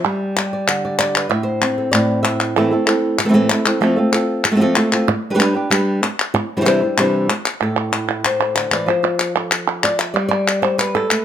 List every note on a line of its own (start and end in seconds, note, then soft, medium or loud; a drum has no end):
0.00 0.20 E5 medium
0.05 1.30 G3 medium
0.05 clap medium
0.37 1.29 G4 medium
0.37 clap medium
0.53 0.84 D5 soft
0.68 1.28 D3 medium
0.68 clap loud
0.85 0.98 D5 medium
0.99 1.29 D5 medium
0.99 clap loud
1.15 1.29 B4 soft
1.15 clap medium
1.29 1.92 A2 medium
1.29 1.45 E5 loud
1.43 1.92 C5 loud
1.62 2.54 C4 medium
1.62 clap medium
1.78 1.91 A4 soft
1.92 2.55 A2 medium
1.92 2.22 D5 medium
1.92 clap medium
2.23 2.47 E5 medium
2.23 clap loud
2.40 clap medium
2.56 2.71 A2 medium
2.56 2.71 E3 medium
2.56 2.71 A3 medium
2.56 2.72 C4 medium
2.56 2.71 E4 medium
2.56 2.70 A4 medium
2.71 2.87 A3 soft
2.71 2.87 C4 soft
2.71 2.86 E4 medium
2.71 2.85 A4 medium
2.87 3.17 A3 soft
2.87 3.18 C4 medium
2.87 3.18 E4 medium
2.87 3.18 A4 medium
2.87 clap medium
3.18 muted nylon-string guitar stroke medium
3.18 clap loud
3.25 3.28 E3 medium
3.25 3.28 A3 medium
3.25 3.28 C4 medium
3.25 3.29 E4 medium
3.25 3.30 A4 medium
3.29 3.33 E3 medium
3.29 3.33 A3 medium
3.29 3.33 C4 medium
3.29 3.33 E4 medium
3.29 3.34 A4 medium
3.34 3.49 A2 medium
3.34 3.49 E3 medium
3.34 3.49 A3 medium
3.34 3.49 C4 medium
3.34 3.49 E4 medium
3.34 3.50 A4 loud
3.50 3.65 A3 medium
3.50 3.65 C4 medium
3.50 3.65 E4 medium
3.50 3.64 A4 medium
3.50 clap medium
3.65 3.80 A3 soft
3.65 3.81 C4 medium
3.65 3.81 E4 soft
3.65 3.81 A4 medium
3.65 clap medium
3.81 3.96 F3 medium
3.81 3.97 A3 medium
3.81 3.97 C4 medium
3.81 3.97 F4 medium
3.81 3.95 A4 loud
3.96 4.13 C4 soft
3.96 4.12 F4 soft
3.96 4.11 A4 medium
4.12 4.44 C4 medium
4.12 4.44 F4 medium
4.12 4.44 A4 medium
4.12 clap medium
4.44 muted nylon-string guitar stroke medium
4.44 clap medium
4.51 4.54 A3 medium
4.51 4.60 A3 medium
4.51 4.55 C4 medium
4.51 4.56 F4 medium
4.51 4.56 A4 medium
4.56 4.75 F3 medium
4.56 4.60 C4 medium
4.56 4.60 F4 medium
4.56 4.61 A4 medium
4.61 4.75 A3 medium
4.61 4.75 C4 medium
4.61 4.76 F4 medium
4.61 4.76 A4 loud
4.76 4.91 A3 medium
4.76 4.92 C4 medium
4.76 4.92 F4 medium
4.76 4.91 A4 medium
4.76 clap medium
4.92 5.08 C4 soft
4.92 5.08 F4 medium
4.92 5.07 A4 medium
4.92 clap medium
5.08 muted nylon-string guitar stroke medium
5.08 clap soft
5.30 5.33 G3 medium
5.30 5.34 D4 medium
5.30 5.34 G4 medium
5.30 5.35 B4 medium
5.34 5.38 G3 medium
5.34 5.39 D4 medium
5.34 5.39 G4 medium
5.34 5.39 B4 loud
5.39 5.54 G3 medium
5.39 5.55 D4 loud
5.39 5.55 G4 loud
5.39 5.53 B4 loud
5.39 clap medium
5.54 5.70 D4 soft
5.54 5.71 G4 soft
5.54 5.70 B4 medium
5.70 6.01 G3 loud
5.70 6.02 D4 medium
5.70 6.02 G4 medium
5.70 6.03 B4 loud
5.70 clap loud
6.03 muted nylon-string guitar stroke medium
6.03 clap medium
6.20 clap medium
6.34 muted nylon-string guitar stroke medium
6.57 6.60 E3 medium
6.57 6.60 G3 medium
6.57 6.61 D4 medium
6.57 6.61 E4 medium
6.57 6.61 C5 medium
6.61 6.65 E3 medium
6.61 6.65 G3 medium
6.61 6.65 D4 medium
6.61 6.65 E4 medium
6.61 6.65 C5 medium
6.65 6.81 C3 loud
6.65 6.81 E3 loud
6.65 6.81 G3 loud
6.65 6.81 D4 loud
6.65 6.81 E4 loud
6.65 6.81 C5 loud
6.65 clap medium
6.82 6.98 D4 soft
6.82 6.97 E4 soft
6.82 6.97 C5 soft
6.97 7.28 C3 medium
6.97 7.29 E3 medium
6.97 7.29 G3 medium
6.97 7.29 D4 medium
6.97 7.29 E4 medium
6.97 7.30 C5 medium
6.97 clap loud
7.30 muted nylon-string guitar stroke medium
7.30 clap medium
7.45 clap medium
7.60 8.86 A2 medium
7.60 8.39 A4 medium
7.77 clap soft
7.92 8.07 E4 soft
7.92 clap medium
8.08 8.24 E4 soft
8.08 clap soft
8.25 8.87 C5 medium
8.25 clap loud
8.40 8.72 A4 soft
8.40 clap medium
8.55 8.70 D3 medium
8.55 clap medium
8.71 8.87 E3 medium
8.71 8.88 D5 loud
8.71 clap medium
8.86 10.12 F3 medium
8.86 9.35 C5 medium
9.03 10.13 F4 soft
9.19 clap medium
9.36 10.13 A4 soft
9.51 clap medium
9.68 clap medium
9.84 9.99 D5 medium
9.84 clap medium
9.99 10.15 E5 medium
9.99 clap medium
10.14 11.10 G3 medium
10.14 10.27 D5 medium
10.29 10.62 D5 loud
10.48 clap medium
10.62 10.78 C5 medium
10.78 11.09 B4 loud
10.78 clap loud
10.95 11.25 A4 medium
11.10 11.25 A3 medium
11.10 11.25 B4 medium
11.10 clap medium